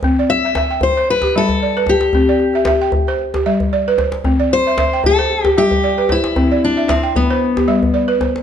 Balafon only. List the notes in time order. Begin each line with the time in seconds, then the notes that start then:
Already playing: C5
0.04 C4
0.19 D5
0.45 E5
0.57 E5
0.71 G5
0.97 C5
1.23 G4
1.36 G3 E5
1.63 D5
1.77 B4
2.15 C4
2.29 D5
2.55 E5
2.67 E5
2.82 G5
3.08 C5
3.34 G4
3.46 G3 E5
3.73 D5
3.88 B4
3.98 C5
4.25 C4
4.40 D5
4.67 E5
4.78 E5
4.93 G5
5.19 C5
5.45 G4
5.58 G3 E5
5.84 D5
5.98 B4
6.10 C5
6.36 C4
6.51 D5
6.77 E5
6.88 E5
7.03 G5
7.30 C5
7.57 G4
7.68 G3 E5
7.94 D5
8.08 B4
8.21 C5